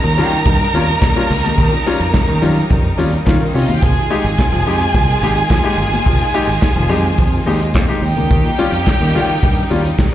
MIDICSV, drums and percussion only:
0, 0, Header, 1, 2, 480
1, 0, Start_track
1, 0, Tempo, 560224
1, 1354, Time_signature, 4, 2, 24, 8
1, 8691, End_track
2, 0, Start_track
2, 0, Title_t, "Drums"
2, 152, Note_on_c, 9, 46, 61
2, 237, Note_off_c, 9, 46, 0
2, 268, Note_on_c, 9, 42, 55
2, 354, Note_off_c, 9, 42, 0
2, 389, Note_on_c, 9, 42, 74
2, 392, Note_on_c, 9, 36, 119
2, 401, Note_on_c, 9, 62, 58
2, 474, Note_off_c, 9, 42, 0
2, 478, Note_off_c, 9, 36, 0
2, 487, Note_off_c, 9, 62, 0
2, 628, Note_on_c, 9, 46, 73
2, 652, Note_on_c, 9, 62, 61
2, 713, Note_off_c, 9, 46, 0
2, 738, Note_off_c, 9, 62, 0
2, 749, Note_on_c, 9, 42, 42
2, 835, Note_off_c, 9, 42, 0
2, 871, Note_on_c, 9, 42, 91
2, 873, Note_on_c, 9, 36, 124
2, 876, Note_on_c, 9, 38, 126
2, 881, Note_on_c, 9, 39, 98
2, 884, Note_on_c, 9, 63, 70
2, 956, Note_off_c, 9, 42, 0
2, 959, Note_off_c, 9, 36, 0
2, 961, Note_off_c, 9, 38, 0
2, 966, Note_off_c, 9, 39, 0
2, 970, Note_off_c, 9, 63, 0
2, 1118, Note_on_c, 9, 46, 76
2, 1204, Note_off_c, 9, 46, 0
2, 1239, Note_on_c, 9, 42, 50
2, 1252, Note_on_c, 9, 63, 95
2, 1324, Note_off_c, 9, 42, 0
2, 1337, Note_off_c, 9, 63, 0
2, 1355, Note_on_c, 9, 36, 123
2, 1356, Note_on_c, 9, 42, 66
2, 1440, Note_off_c, 9, 36, 0
2, 1441, Note_off_c, 9, 42, 0
2, 1596, Note_on_c, 9, 46, 57
2, 1605, Note_on_c, 9, 62, 53
2, 1681, Note_off_c, 9, 46, 0
2, 1691, Note_off_c, 9, 62, 0
2, 1721, Note_on_c, 9, 42, 52
2, 1806, Note_off_c, 9, 42, 0
2, 1830, Note_on_c, 9, 42, 74
2, 1831, Note_on_c, 9, 38, 125
2, 1836, Note_on_c, 9, 36, 108
2, 1845, Note_on_c, 9, 39, 96
2, 1850, Note_on_c, 9, 63, 81
2, 1916, Note_off_c, 9, 38, 0
2, 1916, Note_off_c, 9, 42, 0
2, 1921, Note_off_c, 9, 36, 0
2, 1931, Note_off_c, 9, 39, 0
2, 1936, Note_off_c, 9, 63, 0
2, 2076, Note_on_c, 9, 46, 57
2, 2087, Note_on_c, 9, 62, 35
2, 2087, Note_on_c, 9, 64, 83
2, 2162, Note_off_c, 9, 46, 0
2, 2172, Note_off_c, 9, 62, 0
2, 2172, Note_off_c, 9, 64, 0
2, 2195, Note_on_c, 9, 42, 51
2, 2281, Note_off_c, 9, 42, 0
2, 2317, Note_on_c, 9, 42, 75
2, 2319, Note_on_c, 9, 36, 120
2, 2327, Note_on_c, 9, 62, 52
2, 2403, Note_off_c, 9, 42, 0
2, 2405, Note_off_c, 9, 36, 0
2, 2412, Note_off_c, 9, 62, 0
2, 2560, Note_on_c, 9, 46, 67
2, 2567, Note_on_c, 9, 62, 64
2, 2646, Note_off_c, 9, 46, 0
2, 2653, Note_off_c, 9, 62, 0
2, 2684, Note_on_c, 9, 42, 48
2, 2770, Note_off_c, 9, 42, 0
2, 2797, Note_on_c, 9, 63, 69
2, 2800, Note_on_c, 9, 36, 106
2, 2804, Note_on_c, 9, 39, 84
2, 2804, Note_on_c, 9, 42, 82
2, 2809, Note_on_c, 9, 38, 118
2, 2883, Note_off_c, 9, 63, 0
2, 2886, Note_off_c, 9, 36, 0
2, 2890, Note_off_c, 9, 39, 0
2, 2890, Note_off_c, 9, 42, 0
2, 2895, Note_off_c, 9, 38, 0
2, 3047, Note_on_c, 9, 46, 83
2, 3133, Note_off_c, 9, 46, 0
2, 3163, Note_on_c, 9, 63, 90
2, 3164, Note_on_c, 9, 42, 54
2, 3249, Note_off_c, 9, 63, 0
2, 3250, Note_off_c, 9, 42, 0
2, 3277, Note_on_c, 9, 36, 127
2, 3278, Note_on_c, 9, 42, 57
2, 3363, Note_off_c, 9, 36, 0
2, 3363, Note_off_c, 9, 42, 0
2, 3518, Note_on_c, 9, 62, 57
2, 3522, Note_on_c, 9, 46, 60
2, 3604, Note_off_c, 9, 62, 0
2, 3608, Note_off_c, 9, 46, 0
2, 3645, Note_on_c, 9, 42, 48
2, 3730, Note_off_c, 9, 42, 0
2, 3758, Note_on_c, 9, 36, 113
2, 3761, Note_on_c, 9, 42, 73
2, 3762, Note_on_c, 9, 38, 127
2, 3763, Note_on_c, 9, 39, 109
2, 3775, Note_on_c, 9, 63, 81
2, 3844, Note_off_c, 9, 36, 0
2, 3847, Note_off_c, 9, 38, 0
2, 3847, Note_off_c, 9, 42, 0
2, 3849, Note_off_c, 9, 39, 0
2, 3861, Note_off_c, 9, 63, 0
2, 3997, Note_on_c, 9, 46, 66
2, 4005, Note_on_c, 9, 62, 35
2, 4083, Note_off_c, 9, 46, 0
2, 4091, Note_off_c, 9, 62, 0
2, 4119, Note_on_c, 9, 42, 48
2, 4205, Note_off_c, 9, 42, 0
2, 4235, Note_on_c, 9, 42, 77
2, 4236, Note_on_c, 9, 36, 115
2, 4241, Note_on_c, 9, 62, 57
2, 4321, Note_off_c, 9, 42, 0
2, 4322, Note_off_c, 9, 36, 0
2, 4327, Note_off_c, 9, 62, 0
2, 4476, Note_on_c, 9, 46, 77
2, 4487, Note_on_c, 9, 62, 69
2, 4561, Note_off_c, 9, 46, 0
2, 4573, Note_off_c, 9, 62, 0
2, 4599, Note_on_c, 9, 42, 42
2, 4684, Note_off_c, 9, 42, 0
2, 4715, Note_on_c, 9, 36, 112
2, 4716, Note_on_c, 9, 42, 79
2, 4721, Note_on_c, 9, 38, 122
2, 4721, Note_on_c, 9, 39, 91
2, 4721, Note_on_c, 9, 63, 65
2, 4800, Note_off_c, 9, 36, 0
2, 4802, Note_off_c, 9, 42, 0
2, 4806, Note_off_c, 9, 63, 0
2, 4807, Note_off_c, 9, 38, 0
2, 4807, Note_off_c, 9, 39, 0
2, 4961, Note_on_c, 9, 46, 78
2, 5047, Note_off_c, 9, 46, 0
2, 5076, Note_on_c, 9, 42, 50
2, 5089, Note_on_c, 9, 63, 94
2, 5161, Note_off_c, 9, 42, 0
2, 5174, Note_off_c, 9, 63, 0
2, 5195, Note_on_c, 9, 36, 122
2, 5198, Note_on_c, 9, 42, 61
2, 5280, Note_off_c, 9, 36, 0
2, 5283, Note_off_c, 9, 42, 0
2, 5437, Note_on_c, 9, 46, 57
2, 5437, Note_on_c, 9, 62, 52
2, 5523, Note_off_c, 9, 46, 0
2, 5523, Note_off_c, 9, 62, 0
2, 5557, Note_on_c, 9, 42, 49
2, 5643, Note_off_c, 9, 42, 0
2, 5674, Note_on_c, 9, 38, 124
2, 5674, Note_on_c, 9, 42, 73
2, 5675, Note_on_c, 9, 36, 119
2, 5676, Note_on_c, 9, 39, 106
2, 5687, Note_on_c, 9, 63, 80
2, 5759, Note_off_c, 9, 42, 0
2, 5760, Note_off_c, 9, 38, 0
2, 5761, Note_off_c, 9, 36, 0
2, 5762, Note_off_c, 9, 39, 0
2, 5773, Note_off_c, 9, 63, 0
2, 5917, Note_on_c, 9, 62, 36
2, 5917, Note_on_c, 9, 64, 84
2, 5919, Note_on_c, 9, 46, 64
2, 6003, Note_off_c, 9, 62, 0
2, 6003, Note_off_c, 9, 64, 0
2, 6005, Note_off_c, 9, 46, 0
2, 6039, Note_on_c, 9, 42, 52
2, 6125, Note_off_c, 9, 42, 0
2, 6149, Note_on_c, 9, 62, 57
2, 6156, Note_on_c, 9, 42, 77
2, 6157, Note_on_c, 9, 36, 116
2, 6235, Note_off_c, 9, 62, 0
2, 6242, Note_off_c, 9, 36, 0
2, 6242, Note_off_c, 9, 42, 0
2, 6398, Note_on_c, 9, 46, 75
2, 6405, Note_on_c, 9, 62, 63
2, 6484, Note_off_c, 9, 46, 0
2, 6491, Note_off_c, 9, 62, 0
2, 6519, Note_on_c, 9, 42, 43
2, 6605, Note_off_c, 9, 42, 0
2, 6633, Note_on_c, 9, 63, 76
2, 6638, Note_on_c, 9, 36, 111
2, 6639, Note_on_c, 9, 42, 75
2, 6642, Note_on_c, 9, 39, 93
2, 6643, Note_on_c, 9, 38, 115
2, 6719, Note_off_c, 9, 63, 0
2, 6724, Note_off_c, 9, 36, 0
2, 6724, Note_off_c, 9, 42, 0
2, 6728, Note_off_c, 9, 39, 0
2, 6729, Note_off_c, 9, 38, 0
2, 6884, Note_on_c, 9, 46, 82
2, 6970, Note_off_c, 9, 46, 0
2, 7002, Note_on_c, 9, 42, 54
2, 7005, Note_on_c, 9, 63, 101
2, 7087, Note_off_c, 9, 42, 0
2, 7091, Note_off_c, 9, 63, 0
2, 7118, Note_on_c, 9, 36, 122
2, 7122, Note_on_c, 9, 42, 65
2, 7204, Note_off_c, 9, 36, 0
2, 7208, Note_off_c, 9, 42, 0
2, 7362, Note_on_c, 9, 46, 60
2, 7363, Note_on_c, 9, 62, 47
2, 7448, Note_off_c, 9, 46, 0
2, 7449, Note_off_c, 9, 62, 0
2, 7481, Note_on_c, 9, 42, 48
2, 7566, Note_off_c, 9, 42, 0
2, 7599, Note_on_c, 9, 36, 108
2, 7599, Note_on_c, 9, 38, 127
2, 7599, Note_on_c, 9, 42, 72
2, 7604, Note_on_c, 9, 39, 108
2, 7613, Note_on_c, 9, 63, 76
2, 7685, Note_off_c, 9, 36, 0
2, 7685, Note_off_c, 9, 38, 0
2, 7685, Note_off_c, 9, 42, 0
2, 7689, Note_off_c, 9, 39, 0
2, 7699, Note_off_c, 9, 63, 0
2, 7843, Note_on_c, 9, 46, 63
2, 7928, Note_off_c, 9, 46, 0
2, 7959, Note_on_c, 9, 42, 54
2, 8045, Note_off_c, 9, 42, 0
2, 8078, Note_on_c, 9, 42, 81
2, 8079, Note_on_c, 9, 36, 120
2, 8083, Note_on_c, 9, 62, 56
2, 8164, Note_off_c, 9, 42, 0
2, 8165, Note_off_c, 9, 36, 0
2, 8169, Note_off_c, 9, 62, 0
2, 8318, Note_on_c, 9, 46, 67
2, 8333, Note_on_c, 9, 62, 62
2, 8404, Note_off_c, 9, 46, 0
2, 8419, Note_off_c, 9, 62, 0
2, 8433, Note_on_c, 9, 42, 47
2, 8519, Note_off_c, 9, 42, 0
2, 8552, Note_on_c, 9, 42, 75
2, 8556, Note_on_c, 9, 36, 116
2, 8557, Note_on_c, 9, 38, 114
2, 8559, Note_on_c, 9, 63, 71
2, 8565, Note_on_c, 9, 39, 85
2, 8638, Note_off_c, 9, 42, 0
2, 8642, Note_off_c, 9, 36, 0
2, 8643, Note_off_c, 9, 38, 0
2, 8645, Note_off_c, 9, 63, 0
2, 8651, Note_off_c, 9, 39, 0
2, 8691, End_track
0, 0, End_of_file